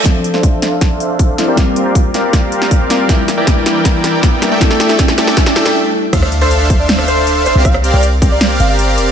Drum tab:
CC |----------------|----------------|----------------|----------------|
HH |x-x-x-x-x-x-x-x-|x-x-x-x-x-x-x-x-|x-x-x-x-x-x-x-x-|x-x-x-x-x-x-----|
SD |o--o--o-o-----o-|o-----o-o--o--o-|o-o-o-o-o-o-o-o-|oooooooooooo----|
BD |o---o---o---o---|o---o---o---o---|o---o---o---o---|o---o---o-------|

CC |x---------------|----------------|
HH |x-x-x-x-x-x-x-x-|x-x-x-x-x-x-x-x-|
SD |rr------or------|rr------o-------|
BD |o-----o---------|o-----o---------|